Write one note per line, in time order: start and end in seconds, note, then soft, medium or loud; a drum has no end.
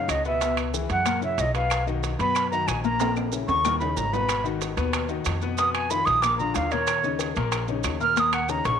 0.00 0.19 C#3 medium
0.00 0.20 C#4 medium
0.00 0.20 D#4 medium
0.00 0.11 F5 medium
0.08 0.84 C#2 medium
0.08 0.26 D#5 medium
0.08 high bongo soft
0.08 low bongo medium
0.08 high timbale medium
0.08 claves medium
0.08 maracas medium
0.25 0.39 B2 medium
0.25 0.39 B3 medium
0.25 0.39 B4 medium
0.25 0.56 E5 medium
0.25 high bongo soft
0.25 maracas soft
0.41 0.68 B2 medium
0.41 0.68 B3 medium
0.41 0.68 B4 medium
0.41 high bongo medium
0.41 high timbale medium
0.41 maracas medium
0.57 high bongo soft
0.57 high timbale loud
0.57 claves medium
0.57 maracas soft
0.74 1.00 E3 medium
0.74 1.01 E4 medium
0.74 1.01 G#4 medium
0.74 high bongo medium
0.74 maracas medium
0.90 1.35 F#2 medium
0.90 1.20 F#5 medium
0.90 high timbale medium
0.90 maracas soft
1.05 1.19 A#2 medium
1.05 1.19 A#3 medium
1.05 1.19 A#4 medium
1.05 high bongo medium
1.05 high timbale medium
1.05 claves medium
1.05 maracas medium
1.21 1.48 C#3 medium
1.21 1.49 C#4 medium
1.21 1.49 E4 medium
1.21 1.42 E5 medium
1.21 high bongo soft
1.21 maracas soft
1.38 2.13 B1 medium
1.38 1.54 D#5 medium
1.38 high bongo soft
1.38 low bongo medium
1.38 high timbale medium
1.38 maracas medium
1.54 1.81 B2 medium
1.54 1.81 B3 medium
1.54 1.81 B4 medium
1.54 1.85 F5 medium
1.54 high bongo soft
1.54 high timbale medium
1.54 maracas soft
1.70 high bongo medium
1.70 high timbale loud
1.70 claves medium
1.70 maracas medium
1.87 2.13 D#3 medium
1.87 2.14 D#4 medium
1.87 2.14 F#4 medium
1.87 high bongo soft
1.87 maracas soft
2.03 high bongo medium
2.03 high timbale medium
2.03 maracas medium
2.19 2.64 F#2 medium
2.19 2.46 B2 medium
2.19 2.46 B3 medium
2.19 2.46 B4 medium
2.19 2.50 B5 loud
2.19 high timbale medium
2.19 maracas soft
2.35 high bongo medium
2.35 high timbale medium
2.35 claves medium
2.35 maracas medium
2.51 2.79 D#3 medium
2.51 2.79 D#4 medium
2.51 2.79 F#4 medium
2.51 2.68 A#5 medium
2.51 high bongo soft
2.51 maracas soft
2.67 3.43 A#1 medium
2.67 2.83 G#5 medium
2.67 high bongo soft
2.67 low bongo medium
2.67 high timbale medium
2.67 claves medium
2.67 maracas medium
2.84 2.97 A#2 medium
2.84 2.97 A#3 medium
2.84 2.98 A#4 medium
2.84 3.14 A#5 medium
2.84 high bongo soft
2.84 maracas soft
3.00 3.27 A#2 medium
3.00 3.27 A#3 medium
3.00 3.27 A#4 medium
3.00 high bongo medium
3.00 high timbale loud
3.00 maracas medium
3.16 high bongo soft
3.16 high timbale medium
3.16 claves medium
3.16 maracas soft
3.32 3.59 C#3 medium
3.32 3.59 C#4 medium
3.32 3.59 E4 medium
3.32 high bongo medium
3.32 maracas medium
3.48 3.93 D#2 medium
3.48 3.78 C#6 loud
3.48 high timbale medium
3.48 maracas soft
3.65 3.78 A#2 medium
3.65 3.78 A#3 medium
3.65 3.78 A#4 medium
3.65 high bongo medium
3.65 low timbale medium
3.65 claves medium
3.65 maracas medium
3.79 4.07 C#3 medium
3.79 4.07 C#4 medium
3.79 4.08 D#4 medium
3.79 3.98 B5 medium
3.79 high bongo soft
3.79 low timbale medium
3.79 maracas soft
3.96 4.72 G#1 medium
3.96 4.14 A#5 medium
3.96 high bongo soft
3.96 low bongo medium
3.96 low timbale medium
3.96 maracas medium
4.13 4.39 B2 medium
4.13 4.40 B3 medium
4.13 4.40 B4 medium
4.13 4.45 B5 medium
4.13 high bongo soft
4.13 low timbale medium
4.13 maracas soft
4.29 high bongo medium
4.29 high timbale loud
4.29 claves medium
4.29 maracas medium
4.44 4.71 D#3 medium
4.44 4.71 D#4 medium
4.44 4.72 F#4 medium
4.44 high bongo soft
4.44 maracas soft
4.62 high bongo medium
4.62 high timbale medium
4.62 maracas medium
4.77 5.22 D#2 medium
4.77 5.04 B2 medium
4.77 5.04 B3 medium
4.77 5.04 B4 medium
4.77 high timbale medium
4.77 maracas soft
4.93 high bongo medium
4.93 high timbale loud
4.93 claves medium
4.93 maracas medium
5.09 5.36 D#3 medium
5.09 5.36 D#4 medium
5.09 5.37 F#4 medium
5.09 high bongo soft
5.09 maracas soft
5.25 6.01 F2 medium
5.25 high bongo soft
5.25 low bongo medium
5.25 high timbale loud
5.25 claves medium
5.25 maracas medium
5.42 5.55 B2 medium
5.42 5.56 B3 medium
5.42 5.56 B4 medium
5.42 high bongo soft
5.42 maracas soft
5.58 5.85 B2 medium
5.58 5.85 B3 medium
5.58 5.85 B4 medium
5.58 5.73 D#6 loud
5.58 high bongo medium
5.58 high timbale medium
5.58 maracas medium
5.73 5.92 G#5 medium
5.73 high bongo soft
5.73 high timbale loud
5.73 claves medium
5.73 maracas soft
5.90 6.17 D#3 medium
5.90 6.18 D#4 medium
5.90 6.18 F4 medium
5.90 6.07 B5 loud
5.90 high bongo medium
5.90 maracas medium
6.05 6.52 A#1 medium
6.05 6.23 D#6 loud
6.05 high timbale medium
6.05 maracas soft
6.21 6.37 A#2 medium
6.21 6.36 A#3 medium
6.21 6.36 A#4 medium
6.21 6.37 D6 loud
6.21 high bongo medium
6.21 high timbale medium
6.21 claves medium
6.21 maracas medium
6.38 6.66 D3 medium
6.38 6.66 D4 medium
6.38 6.66 F4 medium
6.38 6.56 A#5 medium
6.38 high bongo soft
6.38 maracas soft
6.54 7.31 D#2 medium
6.54 6.73 F5 medium
6.54 high bongo soft
6.54 low bongo medium
6.54 high timbale medium
6.54 low timbale medium
6.54 maracas medium
6.71 6.98 A#2 medium
6.71 6.99 A#3 medium
6.71 6.99 A#4 medium
6.71 7.20 C#5 medium
6.71 high bongo soft
6.71 high timbale medium
6.71 maracas soft
6.87 high bongo medium
6.87 high timbale medium
6.87 claves medium
6.87 maracas medium
7.03 7.30 C#3 medium
7.03 7.30 C#4 medium
7.03 7.30 D#4 medium
7.03 high bongo soft
7.03 maracas soft
7.19 high bongo medium
7.19 high timbale medium
7.19 maracas medium
7.36 7.81 A#1 loud
7.36 7.63 A#2 medium
7.36 7.63 A#3 medium
7.36 7.63 A#4 medium
7.36 high timbale medium
7.36 maracas soft
7.52 high bongo medium
7.52 high timbale medium
7.52 claves medium
7.52 maracas medium
7.68 7.95 C#3 medium
7.68 7.95 C#4 medium
7.68 7.95 D#4 medium
7.68 high bongo soft
7.68 maracas soft
7.83 8.59 D#2 loud
7.83 high bongo soft
7.83 low bongo medium
7.83 high timbale loud
7.83 claves medium
7.83 maracas medium
8.00 8.14 A#2 medium
8.00 8.14 A#3 medium
8.00 8.14 A#4 medium
8.00 8.21 F6 loud
8.00 high bongo soft
8.00 maracas soft
8.16 8.43 A#2 medium
8.16 8.43 A#3 medium
8.16 8.43 A#4 medium
8.16 8.35 D#6 loud
8.16 high bongo medium
8.16 high timbale medium
8.16 maracas medium
8.33 8.51 F#5 medium
8.33 high bongo soft
8.33 high timbale loud
8.33 claves medium
8.33 maracas soft
8.49 8.75 C#3 medium
8.49 8.75 C#4 medium
8.49 8.76 D#4 medium
8.49 8.67 A#5 medium
8.49 high bongo medium
8.49 maracas medium
8.65 8.80 A#1 loud
8.65 8.80 C#6 loud
8.65 high bongo loud
8.65 high timbale medium
8.65 maracas soft